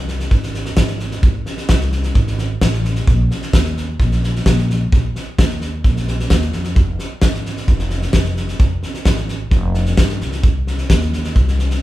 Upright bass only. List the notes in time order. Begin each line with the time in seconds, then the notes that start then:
Already playing: C2
0.31 G#1
0.77 G#1
1.23 G#1
1.70 C2
2.15 G#1
2.62 A1
3.08 A#1
3.53 D#2
4.00 A#1
4.46 A#1
4.93 A#1
5.39 D#2
5.84 A#1
6.31 D#2
6.54 F2
6.77 F1
7.23 G#1
7.68 F1
8.14 F1
8.60 F1
9.06 G#1
9.52 F1
9.98 G2
10.22 C2
10.90 D#2
11.36 C2